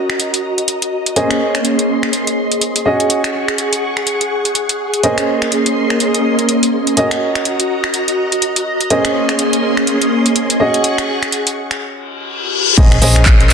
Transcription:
0.00 1.14 C#4 medium
0.00 1.14 F#4 medium
0.00 1.14 A#4 medium
0.00 1.14 D#5 medium
0.00 2.82 D#5 medium
0.00 1.14 A#5 medium
0.10 finger snap medium
0.20 closed hi-hat medium
0.34 closed hi-hat soft
0.58 closed hi-hat soft
0.68 closed hi-hat medium
0.82 closed hi-hat medium
1.06 closed hi-hat soft
1.16 2.84 A#3 medium
1.16 2.83 C#4 medium
1.16 2.84 C#4 medium
1.16 2.83 G#4 medium
1.16 6.93 G#4 medium
1.16 2.83 A#4 medium
1.16 2.83 C5 medium
1.16 2.83 D#5 medium
1.16 2.84 C6 medium
1.16 closed hi-hat medium
1.31 finger snap medium
1.31 closed hi-hat soft
1.55 finger snap medium
1.55 closed hi-hat soft
1.65 closed hi-hat medium
1.79 closed hi-hat soft
2.03 finger snap medium
2.13 closed hi-hat medium
2.27 closed hi-hat soft
2.52 closed hi-hat soft
2.61 closed hi-hat medium
2.76 closed hi-hat soft
2.86 5.01 C#4 medium
2.86 5.01 F#4 medium
2.86 5.01 G#4 medium
2.86 5.01 D#5 medium
2.86 5.01 F#5 medium
2.86 5.01 C#6 medium
3.00 closed hi-hat soft
3.10 closed hi-hat medium
3.24 finger snap medium
3.24 closed hi-hat soft
3.48 finger snap medium
3.48 closed hi-hat soft
3.58 closed hi-hat medium
3.73 closed hi-hat soft
3.97 finger snap medium
4.07 closed hi-hat medium
4.21 closed hi-hat soft
4.45 closed hi-hat soft
4.55 closed hi-hat medium
4.69 closed hi-hat soft
4.94 closed hi-hat soft
5.03 6.95 A#3 medium
5.03 6.95 C#4 medium
5.03 6.95 G#4 medium
5.03 6.95 A#4 medium
5.03 6.95 C5 medium
5.03 6.95 D#5 medium
5.03 6.95 C6 medium
5.03 closed hi-hat medium
5.18 finger snap medium
5.18 closed hi-hat soft
5.42 finger snap medium
5.42 closed hi-hat soft
5.52 closed hi-hat medium
5.66 closed hi-hat soft
5.90 finger snap medium
6.00 closed hi-hat medium
6.14 closed hi-hat soft
6.39 closed hi-hat soft
6.49 closed hi-hat medium
6.63 closed hi-hat soft
6.87 closed hi-hat soft
6.97 8.88 C#4 medium
6.97 8.88 F#4 medium
6.97 8.89 F#4 medium
6.97 8.88 A#4 medium
6.97 8.88 D#5 medium
6.97 10.56 D#5 medium
6.97 8.89 A#5 medium
6.97 closed hi-hat medium
7.11 finger snap medium
7.11 closed hi-hat soft
7.35 finger snap medium
7.35 closed hi-hat soft
7.45 closed hi-hat medium
7.60 closed hi-hat soft
7.84 finger snap medium
7.94 closed hi-hat medium
8.08 closed hi-hat soft
8.32 closed hi-hat soft
8.42 closed hi-hat medium
8.56 closed hi-hat soft
8.81 closed hi-hat soft
8.90 10.58 A#3 medium
8.90 10.57 C#4 medium
8.90 10.58 C#4 medium
8.90 10.57 G#4 medium
8.90 10.58 G#4 medium
8.90 10.57 A#4 medium
8.90 10.57 C5 medium
8.90 10.57 D#5 medium
8.90 10.58 C6 medium
8.90 closed hi-hat medium
9.05 finger snap medium
9.05 closed hi-hat medium
9.29 finger snap medium
9.29 closed hi-hat soft
9.39 closed hi-hat medium
9.53 closed hi-hat soft
9.77 finger snap medium
9.87 closed hi-hat medium
10.02 closed hi-hat soft
10.26 closed hi-hat soft
10.36 closed hi-hat medium
10.50 closed hi-hat medium
10.60 12.75 C#4 medium
10.60 12.75 F#4 medium
10.60 11.80 G#4 medium
10.60 12.75 G#4 medium
10.60 12.75 D#5 medium
10.60 11.80 F#5 medium
10.60 11.80 C#6 medium
10.74 closed hi-hat soft
10.84 closed hi-hat medium
10.98 finger snap medium
10.98 closed hi-hat medium
11.23 finger snap medium
11.23 closed hi-hat soft
11.32 closed hi-hat medium
11.47 closed hi-hat medium
11.71 finger snap medium
11.71 closed hi-hat soft
11.81 reverse cymbal medium
12.78 13.00 A#1 loud
12.78 12.94 C#4 medium
12.78 12.94 G#4 medium
12.78 13.53 A#4 medium
12.78 12.94 C5 medium
12.78 12.94 D#5 loud
12.78 13.53 G#5 medium
12.78 13.53 C6 medium
12.78 13.53 D#6 loud
12.78 kick loud
12.78 closed hi-hat medium
12.78 crash loud
12.78 impact medium
12.78 shaker soft
12.92 finger snap medium
12.92 closed hi-hat medium
12.92 shaker soft
13.02 13.53 A#1 medium
13.02 13.53 C#4 medium
13.02 13.53 G#4 medium
13.02 13.53 C5 medium
13.02 13.53 D#5 loud
13.02 open hi-hat loud
13.02 shaker medium
13.16 finger snap medium
13.16 shaker soft
13.25 kick loud
13.25 clap loud
13.25 closed hi-hat medium
13.25 shaker soft
13.40 closed hi-hat medium
13.40 shaker soft
13.50 clap soft
13.50 open hi-hat loud

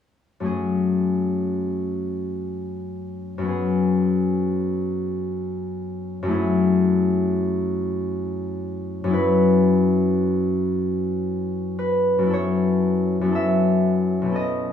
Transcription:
0.40 3.37 F#2 soft
0.40 3.52 A3 soft
0.40 3.44 C#4 soft
0.46 3.47 G#4 soft
3.38 6.21 F#2 soft
3.38 6.33 B3 soft
3.45 7.35 C#4 soft
3.45 6.30 G#4 soft
6.23 9.03 F#2 medium
6.23 9.17 A3 soft
6.29 9.09 E4 soft
6.29 10.22 G#4 soft
9.04 12.17 F#2 medium
9.04 12.97 C#4 medium
9.10 12.25 E4 medium
9.10 11.78 B4 medium
11.79 14.73 B4 medium
12.19 13.20 F#2 soft
12.23 13.23 B3 soft
12.23 13.27 E4 soft
12.30 13.31 A4 soft
12.30 14.73 C#5 medium
13.21 14.33 F#2 soft
13.21 14.24 B3 soft
13.28 14.37 E4 soft
13.28 14.31 A4 soft
13.35 14.40 E5 medium
14.22 14.73 B1 soft
14.22 14.73 B3 soft
14.29 14.73 C#4 soft
14.29 14.73 A4 soft
14.35 14.73 D#5 medium

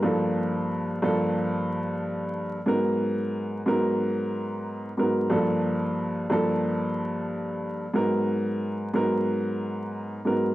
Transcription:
0.03 0.96 G2 medium
0.03 0.96 F3 medium
0.03 0.97 A#3 medium
0.03 0.97 A4 medium
1.02 2.57 G2 medium
1.02 2.57 F3 medium
1.02 2.58 A#3 medium
1.02 2.58 A4 loud
2.66 3.60 G#2 medium
2.66 3.60 F#3 medium
2.66 3.60 B3 medium
2.66 3.61 A#4 loud
3.66 4.90 G#2 medium
3.66 4.90 F#3 medium
3.66 4.91 B3 medium
3.66 4.91 A#4 loud
4.97 5.29 G#2 medium
4.97 5.29 F#3 medium
4.97 5.30 B3 medium
4.97 5.30 A#4 medium
5.30 6.23 G2 medium
5.30 6.24 F3 medium
5.30 6.24 A#3 medium
5.30 6.24 A4 medium
6.30 7.85 G2 medium
6.30 7.85 F3 medium
6.30 7.85 A#3 medium
6.30 7.86 A4 loud
7.94 8.87 G#2 medium
7.94 8.87 F#3 medium
7.94 8.88 B3 medium
7.94 8.88 A#4 loud
8.94 10.17 G#2 medium
8.94 10.18 F#3 medium
8.94 10.18 B3 medium
8.94 10.19 A#4 loud
10.25 10.55 G#2 medium
10.25 10.55 F#3 medium
10.25 10.55 B3 medium
10.25 10.55 A#4 medium

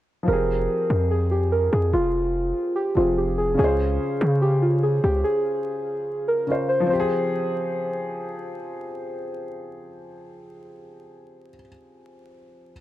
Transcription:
0.23 2.90 F3 medium
0.23 2.92 C4 medium
0.28 0.68 F1 loud
0.28 2.94 G4 medium
0.28 1.07 A#4 medium
0.33 2.95 G#4 medium
0.90 1.69 F2 loud
1.11 1.28 G#4 medium
1.31 1.49 G4 medium
1.52 1.69 A#4 medium
1.72 1.93 F2 loud
1.72 1.90 G#4 medium
1.93 2.53 F1 loud
1.93 2.72 F4 loud
2.76 2.93 G4 medium
2.95 3.56 F1 loud
2.95 3.58 F3 soft
2.95 3.59 C4 soft
2.95 3.14 F4 medium
2.95 3.60 G4 soft
3.00 3.60 G#4 soft
3.18 3.35 G4 medium
3.38 3.55 G#4 medium
3.54 6.42 C#3 medium
3.54 6.44 C#4 medium
3.59 3.99 C#2 loud
3.59 6.46 F4 medium
3.59 4.38 G#4 loud
3.64 6.47 C5 medium
4.21 5.00 C#3 loud
4.42 4.59 G4 medium
4.62 4.79 F4 medium
4.83 5.00 G#4 medium
5.04 5.24 C#2 loud
5.04 5.21 G4 medium
5.24 6.24 G#4 medium
6.28 6.67 A#4 medium
6.47 6.89 C#3 soft
6.47 6.90 C#4 soft
6.47 6.91 F4 soft
6.51 6.91 C5 medium
6.69 6.86 C5 medium
6.80 11.48 F3 medium
6.87 11.54 C4 medium
6.87 8.10 C5 medium
6.93 11.61 G4 medium
7.00 11.67 G#4 medium

